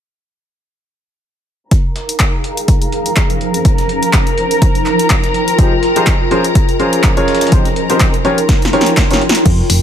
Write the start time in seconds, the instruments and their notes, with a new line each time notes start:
1.71 ambient pad D#4, string section A#4 A#5, kick, closed hi-hat
1.80 ambient pad F5
1.96 snare, closed hi-hat
2.09 closed hi-hat
2.20 kick, snare, clap, closed hi-hat
2.44 ambient pad F3, closed hi-hat
2.57 closed hi-hat
2.68 kick, closed hi-hat
2.82 closed hi-hat
2.92 closed hi-hat
2.99 ambient pad C5
3.06 closed hi-hat
3.16 kick, snare, clap, closed hi-hat
3.30 closed hi-hat
3.41 closed hi-hat
3.54 closed hi-hat
3.65 kick, closed hi-hat
3.78 snare, closed hi-hat
3.89 closed hi-hat
4.03 closed hi-hat
4.13 kick, snare, clap, closed hi-hat
4.27 closed hi-hat
4.38 ambient pad F4, closed hi-hat
4.51 closed hi-hat
4.62 kick, closed hi-hat
4.68 ambient pad A#4
4.75 ambient pad G5, closed hi-hat
4.86 snare, clap, closed hi-hat
4.99 closed hi-hat
5.10 kick, snare, clap, closed hi-hat
5.24 snare, closed hi-hat
5.34 closed hi-hat
5.48 closed hi-hat
5.59 grand piano F3 D#4 F4 G4 G#4 C5, kick, closed hi-hat
5.83 snare, closed hi-hat
5.96 grand piano F3 D#4 F4 G4 G#4 C5, closed hi-hat
6.07 kick, snare, clap, closed hi-hat
6.31 ambient pad F3, grand piano F3 C#4 F4 G#4 A#4 C5, closed hi-hat
6.44 closed hi-hat
6.55 kick, closed hi-hat
6.69 closed hi-hat
6.79 grand piano F3 C#4 F4 G#4 A#4 C5, closed hi-hat
6.86 ambient pad C6
6.93 closed hi-hat
7.04 kick, snare, clap, closed hi-hat
7.17 grand piano F3 C#4 F4 G#4 A#4 C#5, closed hi-hat
7.28 snare, closed hi-hat
7.35 snare, closed hi-hat
7.41 snare, closed hi-hat
7.47 snare, closed hi-hat
7.52 grand piano F3 C4 D#4 A#4 C5, kick, closed hi-hat
7.65 snare, closed hi-hat
7.76 closed hi-hat
7.90 grand piano F3 C4 D#4 G4 A#4 C5, closed hi-hat
8.00 kick, snare, clap, closed hi-hat
8.14 closed hi-hat
8.25 grand piano F3 C#4 F4 G4 A#4 C#5, ambient pad F4, closed hi-hat
8.38 closed hi-hat
8.49 kick, snare, closed hi-hat
8.62 snare, closed hi-hat
8.73 grand piano F3 C#4 F4 G4 A#4 C#5, snare, closed hi-hat
8.80 ambient pad G5, snare
8.86 closed hi-hat
8.97 kick, snare, clap, closed hi-hat
9.11 grand piano F3 C#4 F4 G4 A#4 C#5, snare, closed hi-hat
9.21 closed hi-hat
9.29 snare
9.35 snare, closed hi-hat
9.45 fm bass F2, ambient pad D#4, kick, closed hi-hat, crash
9.70 fm bass F1, finger snap, open hi-hat